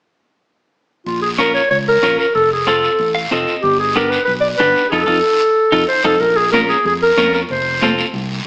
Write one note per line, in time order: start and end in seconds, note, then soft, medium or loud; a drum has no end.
1.06 1.58 A#1 medium
1.06 1.21 F4 medium
1.06 long guiro medium
1.22 1.29 G#4 medium
1.39 1.61 C#4 medium
1.39 1.61 F4 medium
1.39 1.61 A#4 medium
1.39 1.54 A#4 medium
1.39 short guiro medium
1.54 1.69 C#5 medium
1.54 short guiro medium
1.71 1.96 C#2 medium
1.71 1.78 C#5 medium
1.71 long guiro medium
1.88 2.17 A#4 medium
2.03 2.16 A#1 medium
2.03 2.25 C#4 medium
2.03 2.25 F4 medium
2.03 2.25 A#4 medium
2.03 short guiro medium
2.19 2.34 A#4 medium
2.19 short guiro medium
2.35 2.86 F1 medium
2.35 2.50 A4 medium
2.35 long guiro medium
2.53 2.69 G#4 medium
2.67 2.89 C4 medium
2.67 2.90 F4 medium
2.67 3.16 A4 medium
2.67 2.90 A4 medium
2.67 short guiro medium
2.83 short guiro medium
2.99 3.25 A1 medium
2.99 long guiro medium
3.15 3.30 F5 medium
3.31 3.44 F1 medium
3.31 3.54 C4 medium
3.31 3.54 F4 medium
3.31 3.54 A4 medium
3.31 3.62 D#5 medium
3.31 short guiro medium
3.47 short guiro medium
3.62 4.15 G1 medium
3.62 3.78 G4 medium
3.62 long guiro medium
3.79 3.98 G#4 medium
3.95 4.18 B3 medium
3.95 4.19 D4 medium
3.95 4.19 G4 medium
3.95 4.11 A#4 medium
3.95 short guiro medium
4.10 4.24 B4 medium
4.10 short guiro medium
4.25 4.53 B1 medium
4.25 4.33 B4 medium
4.25 long guiro medium
4.41 4.49 D5 medium
4.58 4.73 G1 medium
4.58 4.82 B3 medium
4.58 4.82 D4 medium
4.58 4.83 G4 medium
4.58 4.89 B4 loud
4.58 short guiro medium
4.76 short guiro medium
4.90 5.04 F2 medium
4.90 5.02 D#4 medium
4.90 5.03 F4 medium
4.90 5.83 A4 medium
4.90 5.02 A4 medium
4.90 long guiro medium
5.07 5.20 F2 medium
5.07 5.18 D#4 medium
5.07 5.18 F4 medium
5.07 5.18 A4 medium
5.07 long guiro medium
5.72 5.84 F2 medium
5.72 5.83 D#4 medium
5.72 5.83 F4 medium
5.72 5.83 A4 medium
5.72 long guiro medium
5.88 6.03 C5 medium
6.04 6.17 F2 medium
6.04 6.15 D#4 medium
6.04 6.15 F4 medium
6.04 6.15 A4 medium
6.04 6.22 A4 medium
6.04 long guiro medium
6.20 6.72 A#1 medium
6.20 6.38 A#4 loud
6.20 high conga soft
6.20 long guiro medium
6.37 6.52 G#4 medium
6.52 6.76 C#4 medium
6.52 6.76 F4 medium
6.52 6.60 A#4 medium
6.52 6.76 A#4 medium
6.52 high conga medium
6.52 short guiro medium
6.69 6.84 G#4 medium
6.69 short guiro medium
6.85 7.11 F2 medium
6.85 6.93 G#4 medium
6.85 high conga soft
6.85 long guiro medium
7.03 7.32 A#4 medium
7.17 7.43 F2 medium
7.17 7.40 C#4 medium
7.17 7.40 F4 medium
7.17 7.40 A#4 medium
7.17 high conga medium
7.17 short guiro medium
7.33 7.41 A#4 medium
7.33 short guiro medium
7.49 8.01 F1 medium
7.49 7.95 C5 medium
7.49 high conga soft
7.49 long guiro medium
7.82 8.04 C4 medium
7.82 8.05 F4 medium
7.82 8.05 A4 medium
7.82 high conga medium
7.82 short guiro medium
7.98 short guiro medium
8.14 8.39 C2 medium
8.14 high conga soft
8.14 long guiro medium